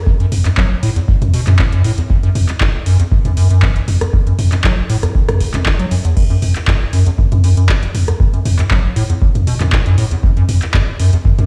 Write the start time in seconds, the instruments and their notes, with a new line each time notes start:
0.06 acid bass F#2, kick
0.20 acid bass F#2, closed hi-hat
0.32 mid tom, open hi-hat
0.45 acid bass F#2, clap, closed hi-hat
0.57 acid bass F#3, kick, clap
0.71 acid bass F#1
0.83 acid bass A2, open hi-hat
0.96 acid bass E2, closed hi-hat
1.08 acid bass F#2, kick
1.22 closed hi-hat, mid tom
1.34 acid bass B2, open hi-hat
1.47 acid bass F#2, clap, closed hi-hat, mid tom
1.59 acid bass A2, kick, clap
1.72 acid bass F#2, closed hi-hat
1.84 acid bass A2, open hi-hat
1.98 acid bass E2, closed hi-hat
2.10 acid bass F#2, kick
2.23 acid bass F#2, closed hi-hat
2.35 mid tom, open hi-hat
2.49 clap, closed hi-hat
2.61 acid bass F#2, kick, clap
2.74 acid bass F#1
2.86 acid bass F#2, open hi-hat
3.00 acid bass E2, closed hi-hat
3.12 acid bass F#2, kick
3.25 acid bass F#2, closed hi-hat, mid tom
3.37 acid bass F#2, open hi-hat
3.50 acid bass F#2, closed hi-hat
3.62 acid bass F#3, kick, clap
3.76 acid bass F#1, closed hi-hat
3.88 mid tom, open hi-hat
4.01 acid bass E2, cross-stick, closed hi-hat
4.13 acid bass F#2, kick
4.27 acid bass F#2, closed hi-hat
4.39 mid tom, open hi-hat
4.52 acid bass F#2, clap, closed hi-hat
4.64 acid bass F#3, kick, clap
4.78 acid bass F#1
4.90 acid bass A2, open hi-hat
5.03 acid bass E2, cross-stick, closed hi-hat
5.15 acid bass F#2, kick
5.29 cross-stick, closed hi-hat, mid tom
5.40 acid bass F#1, kick, open hi-hat
5.54 acid bass F#2, clap, closed hi-hat, mid tom
5.66 acid bass F#1, kick, clap
5.79 acid bass F#3, closed hi-hat
5.91 acid bass F#2, open hi-hat
6.05 acid bass E2, closed hi-hat
6.17 acid bass F#2, kick, crash
6.30 acid bass F#2, closed hi-hat
6.42 mid tom, open hi-hat
6.56 clap, closed hi-hat
6.68 acid bass F#2, kick, clap
6.81 acid bass F#1
6.93 acid bass F#2, open hi-hat
7.06 acid bass E2, closed hi-hat
7.18 acid bass F#2, kick
7.32 acid bass F#2, closed hi-hat, mid tom
7.44 acid bass F#2, open hi-hat
7.57 acid bass F#2, closed hi-hat
7.69 acid bass F#3, kick, clap
7.83 acid bass F#1, closed hi-hat
7.95 mid tom, open hi-hat
8.08 acid bass E2, cross-stick, closed hi-hat
8.20 acid bass F#2, kick
8.34 acid bass F#2, closed hi-hat
8.45 mid tom, open hi-hat
8.59 acid bass F#2, clap, closed hi-hat
8.71 acid bass F#3, kick, clap
8.84 acid bass F#1
8.96 acid bass A2, open hi-hat
9.10 acid bass E2, closed hi-hat
9.22 acid bass F#2, kick
9.35 closed hi-hat, mid tom
9.47 acid bass B2, open hi-hat
9.61 acid bass F#2, clap, closed hi-hat, mid tom
9.72 acid bass A2, kick, clap
9.86 acid bass F#2, closed hi-hat
9.98 acid bass A2, open hi-hat
10.11 acid bass E2, closed hi-hat
10.23 acid bass F#2, kick
10.37 acid bass F#2, closed hi-hat
10.49 mid tom, open hi-hat
10.62 clap, closed hi-hat
10.74 acid bass F#2, kick, clap
10.88 acid bass F#1
11.00 acid bass F#2, open hi-hat
11.13 acid bass E2, closed hi-hat
11.25 acid bass F#2, kick
11.38 acid bass F#2, closed hi-hat, mid tom